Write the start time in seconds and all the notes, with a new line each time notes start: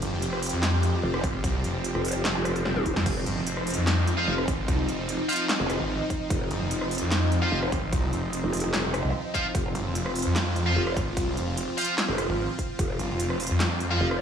Already playing: F3 C4 G4
0.02 G1, closed hi-hat
0.13 F1
0.22 closed hi-hat
0.33 cross-stick
0.43 closed hi-hat, open hi-hat
0.49 F2, closed hi-hat
0.63 snare, clap, closed hi-hat
0.83 F2, closed hi-hat
1.03 F1
1.14 cross-stick
1.24 G#1, kick, closed hi-hat
1.44 C2, kick, closed hi-hat
1.64 F1, closed hi-hat
1.84 closed hi-hat
1.95 F1, cross-stick
2.05 closed hi-hat, open hi-hat
2.11 F1, closed hi-hat
2.25 snare, clap, closed hi-hat
2.45 cross-stick, closed hi-hat
2.56 closed hi-hat
2.66 snare
2.76 D#1, high tom
2.86 kick, closed hi-hat
2.96 F2, snare
3.06 F1 D#4, kick, closed hi-hat, crash
3.26 G1, closed hi-hat
3.37 F1
3.47 closed hi-hat
3.57 cross-stick
3.67 closed hi-hat, open hi-hat
3.74 F2, closed hi-hat
3.87 snare, clap, closed hi-hat
4.07 F2, closed hi-hat
4.18 F4 C5 F5
4.28 F1
4.38 cross-stick
4.48 G#1, kick, closed hi-hat
4.68 C2, kick, closed hi-hat
4.88 F1, closed hi-hat
5.09 closed hi-hat
5.29 F4 C5 F5, closed hi-hat, open hi-hat
5.36 closed hi-hat
5.49 snare, clap, closed hi-hat
5.60 F1
5.70 cross-stick, closed hi-hat
5.80 G#1
6.10 kick, closed hi-hat
6.30 F1, kick, closed hi-hat
6.51 G1, closed hi-hat
6.61 F1
6.71 closed hi-hat
6.82 cross-stick
6.91 closed hi-hat, open hi-hat
6.98 F2, closed hi-hat
7.11 snare, clap, closed hi-hat
7.32 F2, closed hi-hat
7.42 F4 C5 F5
7.52 F1
7.63 cross-stick
7.72 G#1, kick, closed hi-hat
7.93 C2, kick, closed hi-hat
8.13 F1, closed hi-hat
8.33 closed hi-hat
8.44 F1
8.53 closed hi-hat, open hi-hat
8.60 closed hi-hat
8.74 snare, clap, closed hi-hat
8.94 cross-stick, closed hi-hat
9.04 C2
9.34 F4 C5 F5, kick, closed hi-hat
9.55 F1 F4, kick, closed hi-hat
9.75 G1, closed hi-hat
9.86 F1
9.95 closed hi-hat
10.06 cross-stick
10.16 closed hi-hat, open hi-hat
10.22 F2, closed hi-hat
10.36 snare, clap, closed hi-hat
10.56 F2, closed hi-hat
10.66 F4 C5 F5
10.76 F1
10.87 cross-stick
10.97 G#1, kick, closed hi-hat
11.17 C2, kick, closed hi-hat
11.37 F1, closed hi-hat
11.57 closed hi-hat
11.77 F4 C5 F5, closed hi-hat, open hi-hat
11.84 closed hi-hat
11.98 snare, clap, closed hi-hat
12.09 F1
12.18 cross-stick, closed hi-hat
12.29 G#1
12.59 kick, closed hi-hat
12.79 F1, kick, closed hi-hat
12.99 G1, closed hi-hat
13.10 F1
13.20 closed hi-hat
13.30 cross-stick
13.40 closed hi-hat, open hi-hat
13.47 F2, closed hi-hat
13.60 snare, clap, closed hi-hat
13.80 F2, closed hi-hat
13.91 F4 C5 F5
14.01 F1
14.11 cross-stick